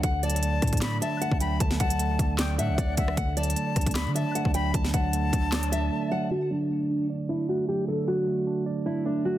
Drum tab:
HH |x-----------x---x---x---x-----------x--x--x--x--x-----------x-----------x-----------x-----------|x-----------x-----x-----x-----------x-----------x-----------x-----------x-----------x-----------|x-----------x---x---x---x-----------x--x--x--x--x-----------x-----------x-----------x-----------|x-----------x-----------x-----------x-----------x-----x-----x-----------------------------------|
CP |------------------------------------------------x-----------------------------------------------|------------------------------------------------x-----------------------------------------------|------------------------------------------------x-----------------------------------------------|------------------------------------------------x-----------------------------------------------|
SD |------------------------------------r-----------o-----------------------------------------------|------o-----------------------------------------o-----------------------------------------r-----|------------------------------------r-----------o-----------------------------------------------|------o-----------------------------------------o-----------------------------------------------|
BD |o-----------------------------------o-----o-----------------------------------o-----------------|o-----------o-----------------------o-----------------------------------o-----------o-----------|o-----------------------------------o-----o-----------------------------------o-----------------|o-----------o-----------------------o-----------------------------------------------------------|

HH |------------------------------------------------------------------------------------------------|------------------------------------------------------------------------------------------------|
CP |------------------------------------------------------------------------------------------------|------------------------------------------------------------------------------------------------|
SD |------------------------------------------------------------------------------------------------|------------------------------------------------------------------------------------------------|
BD |------------------------------------------------------------------------------------------------|------------------------------------------------------------------------------------------------|